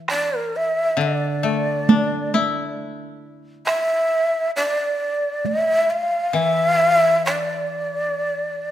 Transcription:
Already playing: E3
0.08 D5, taiko rim
0.38 A#4
0.56 E5
0.97 D3
1.01 D5
1.43 A3
1.89 D4, taiko high
2.34 E4, taiko high
3.66 E5, taiko rim
4.56 D5
5.45 E5, taiko high
5.90 F5
6.33 E3 E5
7.26 D5, taiko rim

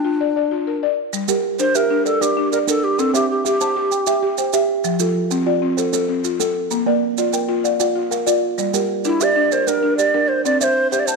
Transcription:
Already playing: D4 G5
0.05 F4
0.21 D5
0.36 D5
0.51 F4
0.67 A#4
0.83 D5
1.13 G3, maracas
1.28 G3 G4 A#4, maracas
1.59 D4 A#4 C5, maracas
1.75 G4 A#4 E5, maracas
1.90 D4
2.06 A4 A#4 D5, maracas
2.21 D4 G4 A#4 D5, maracas
2.37 D4
2.52 G4 A#4 D5, maracas
2.67 D4 A4 A#4, maracas
2.84 G4
2.98 C4 A4 A#4, maracas
3.14 C4 G4 C5 E5, maracas
3.30 G4
3.45 G4 E5, maracas
3.61 C5 A5, maracas
3.76 G4
3.92 G5, maracas
4.07 G4 E5 G5, maracas
4.23 G4
4.38 C5 G5, maracas
4.53 G4 E5, maracas
4.84 F3 E5, maracas
5.00 F3 F4 A4, maracas
5.31 C4 A4, maracas
5.46 F4 D5
5.62 C4
5.77 A4 C5, maracas
5.93 C4 A4 C5, maracas
6.09 C4
6.24 F4, maracas
6.40 C4 A4, maracas
6.71 A#3 A4, maracas
6.86 A#3 A#4 D5
7.18 F4 D5, maracas
7.33 A#4 G5, maracas
7.49 F4
7.64 D5 F5, maracas
7.80 F4 D5 F5, maracas
7.95 F4
8.11 A#4 F5, maracas
8.26 F4 D5, maracas
8.58 G3 D5, maracas
8.74 G3 G4 A#4, maracas
9.05 D4 E4 A#4, maracas
9.21 G4 D5 E5, maracas
9.36 D4
9.52 A#4 C5 D5, maracas
9.67 D4 A#4 D5, maracas
9.83 D4
9.97 G4 D5, maracas
10.14 D4 A#4
10.28 C5
10.45 C4 A#4 D5, maracas
10.60 C4 C5 D5 E5, maracas
10.91 G4 C5 E5, maracas
10.99 D5
11.06 C5 A5, maracas

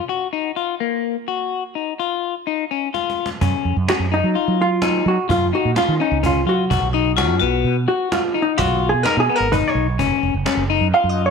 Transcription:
0.09 F#4
0.33 D#4
0.56 F4
0.80 A#3
1.28 F#4
1.75 D#4
2.00 F4
2.47 D#4
2.71 C#4
2.94 F4, cajon slap
3.10 cajon slap
3.26 cajon slap
3.41 F#2 C#4, cajon bass
3.65 F2, cajon slap
3.77 F#2
3.88 C#4 F#4, cajon slap
3.99 F#2
4.12 D#4, cajon slap
4.24 F#3
4.35 F4, cajon slap
4.48 F#3
4.59 F4, cajon slap
4.82 D#4, cajon slap
5.06 F#3 F#4, cajon slap
5.29 F#2 F4, cajon bass
5.53 D#4 F#4, cajon slap
5.65 A#2
5.76 F4, cajon slap
5.88 D#3
6.00 C#4 D#4, cajon slap
6.11 C#2
6.23 C#4 F4, cajon bass
6.46 F#3 F4 F#4, cajon slap
6.70 B1 F#4, cajon bass
6.82 B1
6.93 D#4, cajon slap
7.17 F4 F#4, cajon slap
7.30 F#2
7.40 B1 B3 F#4, cajon slap
7.64 B2, cajon slap
7.88 F#4, cajon slap
8.12 F4, cajon slap
8.34 D#4, cajon slap
8.42 D#4
8.58 B1 F4 F#4, cajon bass
8.83 cajon slap
8.89 G#4
8.94 B2
9.03 D#4 A#4, cajon slap
9.17 B2 G#4
9.29 B3, cajon slap
9.36 A#4
9.40 G#1
9.52 D#4 B4, cajon bass
9.68 C#5
9.75 B1, cajon slap
9.99 F#1 C#4, cajon bass
10.23 F1, cajon slap
10.34 F#1
10.46 C#4, cajon slap
10.57 F#1
10.70 D#4, cajon slap
10.81 F#2
10.93 F4 F5, cajon slap
11.04 F#2
11.09 D#5
11.16 cajon slap
11.26 C#5

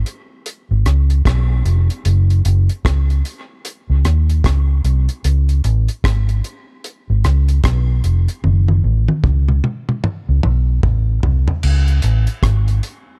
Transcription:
0.06 closed hi-hat
0.46 closed hi-hat
0.71 G#1
0.86 C#2, cross-stick, closed hi-hat
1.10 closed hi-hat
1.25 B1, kick, cross-stick, closed hi-hat
1.65 F1, closed hi-hat
1.90 closed hi-hat
2.05 F#1, closed hi-hat
2.30 closed hi-hat
2.45 F#1, closed hi-hat
2.69 closed hi-hat
2.85 C#2, kick, cross-stick, closed hi-hat
3.10 closed hi-hat
3.25 closed hi-hat
3.65 closed hi-hat
3.90 C#2
4.05 D#2, cross-stick, closed hi-hat
4.29 closed hi-hat
4.44 C#2, kick, cross-stick, closed hi-hat
4.84 C2, closed hi-hat
5.09 closed hi-hat
5.24 C#2, closed hi-hat
5.49 closed hi-hat
5.64 A1, closed hi-hat
5.88 closed hi-hat
6.04 G#1, kick, cross-stick, closed hi-hat
6.29 closed hi-hat
6.44 closed hi-hat
6.84 closed hi-hat
7.10 G#1
7.24 C#2, cross-stick, closed hi-hat
7.49 closed hi-hat
7.64 B1, kick, cross-stick, closed hi-hat
8.04 F1, closed hi-hat
8.28 closed hi-hat
8.44 F#1, high tom
8.68 high tom
8.84 A1
9.08 high tom
9.24 C#2, kick, mid tom
9.48 mid tom
9.64 mid tom
9.89 mid tom
10.04 mid tom
10.29 C#2
10.43 B1, mid tom
10.83 A1, kick, floor tom
11.23 C2, floor tom
11.48 floor tom
11.63 C#2, crash
11.88 closed hi-hat
12.02 A1, closed hi-hat
12.27 closed hi-hat
12.43 G#1, kick, cross-stick, closed hi-hat
12.68 closed hi-hat
12.83 closed hi-hat

